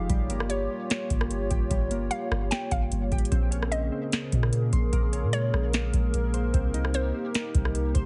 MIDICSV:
0, 0, Header, 1, 6, 480
1, 0, Start_track
1, 0, Tempo, 402685
1, 116, Time_signature, 4, 2, 24, 8
1, 9603, End_track
2, 0, Start_track
2, 0, Title_t, "Synth pluck"
2, 0, Program_c, 0, 84
2, 590, Note_on_c, 0, 73, 85
2, 1985, Note_off_c, 0, 73, 0
2, 2511, Note_on_c, 0, 77, 82
2, 2965, Note_off_c, 0, 77, 0
2, 2991, Note_on_c, 0, 79, 76
2, 3221, Note_off_c, 0, 79, 0
2, 3237, Note_on_c, 0, 77, 77
2, 3464, Note_off_c, 0, 77, 0
2, 4429, Note_on_c, 0, 75, 78
2, 5824, Note_off_c, 0, 75, 0
2, 6353, Note_on_c, 0, 73, 92
2, 7267, Note_off_c, 0, 73, 0
2, 8279, Note_on_c, 0, 72, 96
2, 9603, Note_off_c, 0, 72, 0
2, 9603, End_track
3, 0, Start_track
3, 0, Title_t, "Analog synth pad"
3, 0, Program_c, 1, 89
3, 0, Note_on_c, 1, 67, 76
3, 115, Note_on_c, 1, 58, 80
3, 115, Note_on_c, 1, 65, 77
3, 116, Note_on_c, 1, 73, 89
3, 3908, Note_off_c, 1, 67, 0
3, 3917, Note_off_c, 1, 65, 0
3, 3917, Note_off_c, 1, 73, 0
3, 3954, Note_on_c, 1, 49, 76
3, 3954, Note_on_c, 1, 68, 75
3, 3954, Note_on_c, 1, 70, 91
3, 7756, Note_off_c, 1, 49, 0
3, 7756, Note_off_c, 1, 68, 0
3, 7796, Note_on_c, 1, 63, 75
3, 7796, Note_on_c, 1, 67, 78
3, 9603, Note_off_c, 1, 58, 0
3, 9603, Note_off_c, 1, 63, 0
3, 9603, Note_off_c, 1, 67, 0
3, 9603, Note_off_c, 1, 70, 0
3, 9603, End_track
4, 0, Start_track
4, 0, Title_t, "Synth keys"
4, 0, Program_c, 2, 88
4, 113, Note_on_c, 2, 55, 95
4, 363, Note_on_c, 2, 58, 84
4, 586, Note_off_c, 2, 55, 0
4, 600, Note_on_c, 2, 55, 84
4, 826, Note_off_c, 2, 55, 0
4, 840, Note_on_c, 2, 55, 80
4, 1796, Note_on_c, 2, 67, 86
4, 1799, Note_off_c, 2, 58, 0
4, 2025, Note_off_c, 2, 55, 0
4, 2039, Note_on_c, 2, 55, 85
4, 2277, Note_on_c, 2, 58, 83
4, 2498, Note_off_c, 2, 55, 0
4, 2512, Note_on_c, 2, 55, 80
4, 2744, Note_off_c, 2, 55, 0
4, 2759, Note_on_c, 2, 55, 78
4, 3235, Note_off_c, 2, 67, 0
4, 3716, Note_off_c, 2, 58, 0
4, 3722, Note_on_c, 2, 67, 87
4, 3952, Note_on_c, 2, 60, 95
4, 3957, Note_off_c, 2, 55, 0
4, 3959, Note_off_c, 2, 67, 0
4, 4187, Note_on_c, 2, 61, 81
4, 4427, Note_off_c, 2, 60, 0
4, 4442, Note_on_c, 2, 60, 77
4, 4657, Note_off_c, 2, 60, 0
4, 4671, Note_on_c, 2, 60, 82
4, 5631, Note_off_c, 2, 61, 0
4, 5637, Note_on_c, 2, 84, 85
4, 5873, Note_on_c, 2, 58, 104
4, 6112, Note_on_c, 2, 61, 81
4, 6113, Note_off_c, 2, 60, 0
4, 6357, Note_on_c, 2, 56, 78
4, 7076, Note_off_c, 2, 84, 0
4, 7314, Note_off_c, 2, 58, 0
4, 7554, Note_off_c, 2, 61, 0
4, 7555, Note_on_c, 2, 72, 80
4, 7791, Note_on_c, 2, 60, 92
4, 7795, Note_off_c, 2, 72, 0
4, 7796, Note_off_c, 2, 56, 0
4, 8034, Note_on_c, 2, 63, 75
4, 8260, Note_off_c, 2, 60, 0
4, 8274, Note_on_c, 2, 60, 90
4, 8501, Note_off_c, 2, 60, 0
4, 8516, Note_on_c, 2, 60, 80
4, 9470, Note_on_c, 2, 72, 96
4, 9474, Note_off_c, 2, 63, 0
4, 9603, Note_off_c, 2, 60, 0
4, 9603, Note_off_c, 2, 72, 0
4, 9603, End_track
5, 0, Start_track
5, 0, Title_t, "808-style bass"
5, 0, Program_c, 3, 38
5, 115, Note_on_c, 3, 31, 113
5, 806, Note_off_c, 3, 31, 0
5, 1317, Note_on_c, 3, 31, 104
5, 1777, Note_off_c, 3, 31, 0
5, 1798, Note_on_c, 3, 31, 107
5, 2027, Note_off_c, 3, 31, 0
5, 2035, Note_on_c, 3, 31, 107
5, 2496, Note_off_c, 3, 31, 0
5, 2755, Note_on_c, 3, 31, 100
5, 2985, Note_off_c, 3, 31, 0
5, 3236, Note_on_c, 3, 31, 104
5, 3466, Note_off_c, 3, 31, 0
5, 3475, Note_on_c, 3, 31, 110
5, 3706, Note_off_c, 3, 31, 0
5, 3718, Note_on_c, 3, 31, 101
5, 3947, Note_off_c, 3, 31, 0
5, 3956, Note_on_c, 3, 34, 118
5, 4647, Note_off_c, 3, 34, 0
5, 5156, Note_on_c, 3, 46, 104
5, 5616, Note_off_c, 3, 46, 0
5, 5637, Note_on_c, 3, 34, 110
5, 5867, Note_off_c, 3, 34, 0
5, 5875, Note_on_c, 3, 34, 108
5, 6234, Note_on_c, 3, 46, 104
5, 6252, Note_off_c, 3, 34, 0
5, 6577, Note_off_c, 3, 46, 0
5, 6594, Note_on_c, 3, 34, 101
5, 7056, Note_off_c, 3, 34, 0
5, 7076, Note_on_c, 3, 34, 105
5, 7306, Note_off_c, 3, 34, 0
5, 7315, Note_on_c, 3, 34, 111
5, 7776, Note_off_c, 3, 34, 0
5, 7795, Note_on_c, 3, 36, 113
5, 8486, Note_off_c, 3, 36, 0
5, 8997, Note_on_c, 3, 36, 106
5, 9457, Note_off_c, 3, 36, 0
5, 9478, Note_on_c, 3, 36, 103
5, 9603, Note_off_c, 3, 36, 0
5, 9603, End_track
6, 0, Start_track
6, 0, Title_t, "Drums"
6, 114, Note_on_c, 9, 42, 72
6, 115, Note_on_c, 9, 36, 121
6, 233, Note_off_c, 9, 42, 0
6, 234, Note_off_c, 9, 36, 0
6, 355, Note_on_c, 9, 42, 76
6, 474, Note_off_c, 9, 42, 0
6, 480, Note_on_c, 9, 37, 93
6, 593, Note_on_c, 9, 42, 84
6, 599, Note_off_c, 9, 37, 0
6, 713, Note_off_c, 9, 42, 0
6, 1075, Note_on_c, 9, 42, 74
6, 1084, Note_on_c, 9, 38, 95
6, 1195, Note_off_c, 9, 42, 0
6, 1203, Note_off_c, 9, 38, 0
6, 1315, Note_on_c, 9, 42, 78
6, 1317, Note_on_c, 9, 36, 87
6, 1434, Note_off_c, 9, 42, 0
6, 1436, Note_off_c, 9, 36, 0
6, 1442, Note_on_c, 9, 37, 96
6, 1557, Note_on_c, 9, 42, 75
6, 1561, Note_off_c, 9, 37, 0
6, 1676, Note_off_c, 9, 42, 0
6, 1795, Note_on_c, 9, 42, 68
6, 1798, Note_on_c, 9, 36, 100
6, 1914, Note_off_c, 9, 42, 0
6, 1917, Note_off_c, 9, 36, 0
6, 2034, Note_on_c, 9, 42, 72
6, 2035, Note_on_c, 9, 36, 117
6, 2154, Note_off_c, 9, 36, 0
6, 2154, Note_off_c, 9, 42, 0
6, 2275, Note_on_c, 9, 42, 74
6, 2394, Note_off_c, 9, 42, 0
6, 2514, Note_on_c, 9, 42, 79
6, 2633, Note_off_c, 9, 42, 0
6, 2761, Note_on_c, 9, 37, 97
6, 2880, Note_off_c, 9, 37, 0
6, 2996, Note_on_c, 9, 42, 79
6, 3004, Note_on_c, 9, 38, 97
6, 3115, Note_off_c, 9, 42, 0
6, 3124, Note_off_c, 9, 38, 0
6, 3235, Note_on_c, 9, 42, 78
6, 3236, Note_on_c, 9, 36, 86
6, 3354, Note_off_c, 9, 42, 0
6, 3356, Note_off_c, 9, 36, 0
6, 3476, Note_on_c, 9, 42, 78
6, 3596, Note_off_c, 9, 42, 0
6, 3715, Note_on_c, 9, 42, 42
6, 3718, Note_on_c, 9, 36, 99
6, 3796, Note_off_c, 9, 42, 0
6, 3796, Note_on_c, 9, 42, 55
6, 3837, Note_off_c, 9, 36, 0
6, 3875, Note_off_c, 9, 42, 0
6, 3875, Note_on_c, 9, 42, 69
6, 3955, Note_off_c, 9, 42, 0
6, 3955, Note_on_c, 9, 36, 121
6, 3955, Note_on_c, 9, 42, 68
6, 4074, Note_off_c, 9, 36, 0
6, 4074, Note_off_c, 9, 42, 0
6, 4196, Note_on_c, 9, 42, 75
6, 4315, Note_off_c, 9, 42, 0
6, 4321, Note_on_c, 9, 37, 90
6, 4434, Note_on_c, 9, 42, 81
6, 4440, Note_off_c, 9, 37, 0
6, 4554, Note_off_c, 9, 42, 0
6, 4916, Note_on_c, 9, 42, 81
6, 4925, Note_on_c, 9, 38, 93
6, 5035, Note_off_c, 9, 42, 0
6, 5044, Note_off_c, 9, 38, 0
6, 5154, Note_on_c, 9, 42, 77
6, 5156, Note_on_c, 9, 36, 92
6, 5274, Note_off_c, 9, 42, 0
6, 5275, Note_off_c, 9, 36, 0
6, 5281, Note_on_c, 9, 37, 93
6, 5396, Note_on_c, 9, 42, 77
6, 5401, Note_off_c, 9, 37, 0
6, 5515, Note_off_c, 9, 42, 0
6, 5635, Note_on_c, 9, 42, 66
6, 5638, Note_on_c, 9, 36, 99
6, 5754, Note_off_c, 9, 42, 0
6, 5757, Note_off_c, 9, 36, 0
6, 5875, Note_on_c, 9, 36, 116
6, 5875, Note_on_c, 9, 42, 70
6, 5994, Note_off_c, 9, 36, 0
6, 5994, Note_off_c, 9, 42, 0
6, 6115, Note_on_c, 9, 42, 77
6, 6234, Note_off_c, 9, 42, 0
6, 6354, Note_on_c, 9, 42, 80
6, 6473, Note_off_c, 9, 42, 0
6, 6602, Note_on_c, 9, 37, 89
6, 6721, Note_off_c, 9, 37, 0
6, 6836, Note_on_c, 9, 42, 77
6, 6844, Note_on_c, 9, 38, 100
6, 6955, Note_off_c, 9, 42, 0
6, 6963, Note_off_c, 9, 38, 0
6, 7075, Note_on_c, 9, 42, 74
6, 7076, Note_on_c, 9, 36, 90
6, 7194, Note_off_c, 9, 42, 0
6, 7196, Note_off_c, 9, 36, 0
6, 7316, Note_on_c, 9, 42, 75
6, 7436, Note_off_c, 9, 42, 0
6, 7556, Note_on_c, 9, 42, 67
6, 7675, Note_off_c, 9, 42, 0
6, 7795, Note_on_c, 9, 36, 118
6, 7795, Note_on_c, 9, 42, 70
6, 7914, Note_off_c, 9, 42, 0
6, 7915, Note_off_c, 9, 36, 0
6, 8036, Note_on_c, 9, 42, 76
6, 8155, Note_off_c, 9, 42, 0
6, 8161, Note_on_c, 9, 37, 95
6, 8274, Note_on_c, 9, 42, 78
6, 8280, Note_off_c, 9, 37, 0
6, 8393, Note_off_c, 9, 42, 0
6, 8755, Note_on_c, 9, 42, 79
6, 8764, Note_on_c, 9, 38, 95
6, 8875, Note_off_c, 9, 42, 0
6, 8883, Note_off_c, 9, 38, 0
6, 8995, Note_on_c, 9, 42, 77
6, 8997, Note_on_c, 9, 36, 91
6, 9114, Note_off_c, 9, 42, 0
6, 9116, Note_off_c, 9, 36, 0
6, 9122, Note_on_c, 9, 37, 93
6, 9237, Note_on_c, 9, 42, 75
6, 9241, Note_off_c, 9, 37, 0
6, 9356, Note_off_c, 9, 42, 0
6, 9475, Note_on_c, 9, 42, 67
6, 9478, Note_on_c, 9, 36, 95
6, 9594, Note_off_c, 9, 42, 0
6, 9597, Note_off_c, 9, 36, 0
6, 9603, End_track
0, 0, End_of_file